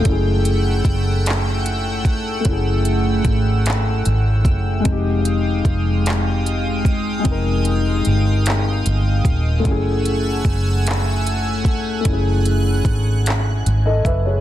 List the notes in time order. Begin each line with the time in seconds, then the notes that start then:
Already playing: G5
0.00 A3
0.04 F#1 A3 C#4 E4 F#5 E6, kick, closed hi-hat
0.12 G#4
0.45 closed hi-hat
0.85 F#1, kick, closed hi-hat
1.26 clap, closed hi-hat
1.66 closed hi-hat
2.05 kick, closed hi-hat
2.40 A3 C#4
2.45 F#1 E4, kick, closed hi-hat
2.52 G#4
2.85 closed hi-hat
3.25 G#1, kick, closed hi-hat
3.66 clap, closed hi-hat
4.05 G#1, closed hi-hat
4.45 F#1, kick, closed hi-hat
4.80 G#3 C4 G5
4.84 F1 G#3 D#4 F5 D#6, kick, closed hi-hat
4.92 G4
5.25 closed hi-hat
5.65 F1, kick, closed hi-hat
6.06 clap, closed hi-hat
6.46 closed hi-hat
6.85 kick, closed hi-hat
7.19 G#3 C4
7.25 F1 D#4, kick, closed hi-hat
7.31 A#4
7.65 closed hi-hat
8.05 G1, closed hi-hat
8.46 clap, closed hi-hat
8.86 G1, closed hi-hat
9.25 D#1, kick, closed hi-hat
9.60 A3 C#4
9.65 F#1 A3 E4 F#5 G#5 E6, kick, closed hi-hat
9.71 G#4
10.05 closed hi-hat
10.45 F#1, kick, closed hi-hat
10.87 clap, closed hi-hat
11.27 closed hi-hat
11.65 kick, closed hi-hat
12.01 A3 C#4
12.05 F#1 E4 F#6, kick, closed hi-hat
12.13 G#4
12.45 closed hi-hat
12.85 G#1, kick, closed hi-hat
13.26 clap, closed hi-hat
13.66 G#1, closed hi-hat
13.86 A4 D#5
14.05 F#1 B4 E5, kick, closed hi-hat
14.26 G#4 C#5